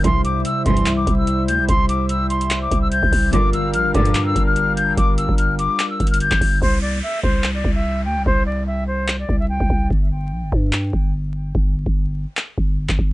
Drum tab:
HH |x-----x-----x-----x--x--x-----x-----x-----x-----|x-----x-----x-----x--x--x-----x-----x-----o-----|x-----x-----x-----x--x--x-----x-----x-----x-----|x-----x-----x-----x-----x-----x-x-x-x-----o-----|
CP |------------------------x-----------------------|------------------------x-----------------------|------------------------x-----------------------|------------------------x--------------x--------|
BD |o-----------------o-----------o-----------------|o-----------------------------o--------o--o-----|o-----------------o-----------o-----------------|o--------o--------------------o--------o--o-----|

HH |------------------------------------------------|------------------------------------------------|------------------------------------------------|------------------------------------------------|
CP |------------------------x-----------------------|------------------------x-----------------------|------------------------x-----------------------|------------------------x--------------x--------|
BD |o-----------------o-----------o-----------------|o-----------------------------o--------o--o-----|o-----------------o-----------o-----------------|o--------o--------------------o--------o--o-----|